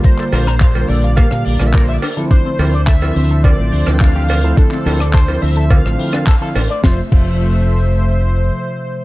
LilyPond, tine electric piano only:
\new Staff \with { instrumentName = "Tine electric piano" } { \clef bass \time 4/4 \key f \major \tempo 4 = 106 <d g bes f'>8 <d g bes f'>16 r8 <d g bes f'>8. <d g bes g'>8. <d g bes f'>8. r16 <d f c' e'>16~ | <d f c' e'>8 <d f c' e'>16 r8 <d f c' e'>8. <d f c' f'>8. <d e f c'>4 <d f c' e'>16~ | <d f c' e'>8 <d f c' e'>16 r8 <d f c' e'>8. <d f c' f'>8 <d f c' e'>16 <d f c' d'>16 r16 <d f c' e'>16 r8 | <c f a e''>16 r16 <c f a e''>2.~ <c f a e''>8 | }